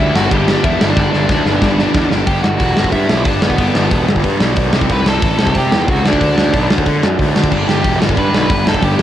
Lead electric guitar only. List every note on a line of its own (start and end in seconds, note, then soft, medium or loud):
0.00 0.14 E4 medium
0.00 0.16 E5 loud
0.16 0.31 F#4 medium
0.16 0.32 F#5 medium
0.31 0.62 G4 medium
0.31 0.64 G5 medium
0.64 0.87 E4 medium
0.64 0.87 E5 medium
0.89 1.11 D4 medium
0.89 1.12 D5 medium
1.13 2.07 D4 medium
1.13 2.07 D5 medium
2.27 2.43 G4 medium
2.27 2.42 G5 medium
2.43 2.90 F#4 medium
2.43 2.92 F#5 loud
2.92 3.24 E4 medium
2.92 3.26 E5 medium
3.26 3.42 D4 medium
3.26 3.42 D5 medium
3.42 4.05 B3 medium
3.42 4.08 B4 medium
4.92 5.06 B4 medium
4.92 5.08 B5 medium
5.08 5.53 A4 medium
5.08 5.58 A5 medium
5.57 5.87 G4 medium
5.57 5.87 G5 medium
5.89 6.04 F#4 medium
5.89 6.07 F#5 medium
6.06 6.67 D4 medium
6.06 6.68 D5 medium
7.53 7.68 D4 medium
7.53 7.68 D5 medium
7.68 7.99 G4 medium
7.68 7.98 G5 loud
8.18 8.33 B4 medium
8.18 8.33 B5 loud
8.35 8.65 B4 medium
8.35 8.65 B5 loud
8.68 8.83 A4 medium
8.68 8.84 A5 medium
8.84 9.02 G4 medium
8.84 9.02 G5 medium